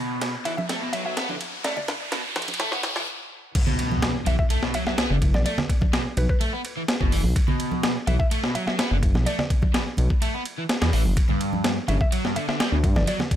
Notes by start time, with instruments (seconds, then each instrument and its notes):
Already playing: overdriven electric guitar B2, riser
0.21 snare, ride
0.45 detuned saw bass B1, overdriven electric guitar E3, synth pluck E5, ride
0.57 synth pluck E5, high conga
0.69 overdriven electric guitar A3, snare, ride
0.81 overdriven electric guitar B2
0.93 detuned saw bass B1, overdriven electric guitar F#3, synth pluck E5, ride
1.05 detuned saw bass B1, overdriven electric guitar F#3, synth pluck E5
1.17 overdriven electric guitar B3, snare, ride
1.29 detuned saw bass A1, overdriven electric guitar D3, high conga
1.41 ride
1.64 overdriven electric guitar A3, synth pluck D5, snare, ride
1.77 synth pluck D5, low conga
1.88 snare, ride
2.12 overdriven electric guitar B2, snare, ride
2.36 detuned saw bass B1, snare, ride, high conga
2.42 ride
2.48 ride, high conga
2.54 ride
2.60 overdriven electric guitar A3, snare, ride
2.72 overdriven electric guitar B3, snare
2.83 detuned saw bass B1, snare, ride
2.96 detuned saw bass B1, overdriven electric guitar E3, snare
3.55 kick, crash, ride, impact
3.67 overdriven electric guitar B2, low conga
3.79 ride
3.92 high conga
4.02 snare, ride
4.26 detuned saw bass B1, overdriven electric guitar E3, synth pluck E5, ride, high conga
4.39 synth pluck E5, kick
4.50 overdriven electric guitar A3, ride
4.63 overdriven electric guitar B2, snare
4.74 overdriven electric guitar F#3, synth pluck E5, ride
4.87 overdriven electric guitar F#3, synth pluck E5, snare
4.98 overdriven electric guitar B3, snare, ride
5.10 detuned saw bass F#1, overdriven electric guitar D3
5.22 detuned saw bass F#1, kick, ride
5.34 detuned saw bass B1, synth pluck D5, snare, high conga
5.46 overdriven electric guitar A3, synth pluck D5, ride
5.58 snare, low conga
5.69 kick, ride
5.81 kick, high conga
5.93 overdriven electric guitar B2, snare, ride
6.17 detuned saw bass B1, synth pluck B4, ride, high conga
6.29 synth pluck B4, kick
6.41 overdriven electric guitar A3, ride
6.53 overdriven electric guitar B3
6.65 ride
6.77 overdriven electric guitar E3
6.88 snare, ride
7.01 detuned saw bass F#1, overdriven electric guitar B2, kick
7.12 detuned saw bass F#1, overdriven electric guitar E3, open hi-hat
7.24 detuned saw bass B1, high conga
7.36 kick, ride
7.48 overdriven electric guitar B2, low conga
7.60 ride
7.72 high conga
7.83 snare, ride
8.07 detuned saw bass B1, overdriven electric guitar E3, synth pluck E5, ride, high conga
8.19 synth pluck E5, kick
8.31 overdriven electric guitar A3, ride
8.44 overdriven electric guitar B2, snare
8.55 overdriven electric guitar F#3, synth pluck E5, ride
8.67 overdriven electric guitar F#3, synth pluck E5, snare
8.79 overdriven electric guitar B3, snare, ride
8.91 detuned saw bass F#1, overdriven electric guitar D3
9.03 detuned saw bass F#1, kick, ride
9.15 detuned saw bass B1, snare, high conga
9.26 overdriven electric guitar A3, synth pluck D5, ride
9.39 synth pluck D5, snare, low conga
9.50 kick, ride
9.62 kick, high conga
9.74 overdriven electric guitar B2, snare, ride
9.97 detuned saw bass B1, ride, high conga
10.10 kick
10.22 overdriven electric guitar A3, ride
10.34 overdriven electric guitar B3
10.46 ride
10.58 overdriven electric guitar E3
10.69 snare, ride
10.82 detuned saw bass E2, overdriven electric guitar B2, snare, ride
10.93 detuned saw bass A1, overdriven electric guitar E3, open hi-hat
11.05 detuned saw bass F#1, high conga
11.17 kick, ride
11.29 overdriven electric guitar G2, low conga
11.41 ride
11.53 high conga
11.64 snare, ride
11.88 detuned saw bass G1, overdriven electric guitar C#3, synth pluck E5, ride, high conga
12.01 synth pluck E5, kick
12.12 overdriven electric guitar F#3, ride
12.25 overdriven electric guitar G2, snare
12.36 overdriven electric guitar D3, synth pluck E5, ride
12.48 overdriven electric guitar D3, synth pluck E5, snare
12.60 overdriven electric guitar G3, snare, ride
12.72 detuned saw bass D2, overdriven electric guitar B2
12.84 detuned saw bass G2, kick, ride
12.96 detuned saw bass G1, synth pluck D5, snare, high conga
13.07 overdriven electric guitar F#3, synth pluck D5, ride
13.19 snare, low conga
13.31 kick, ride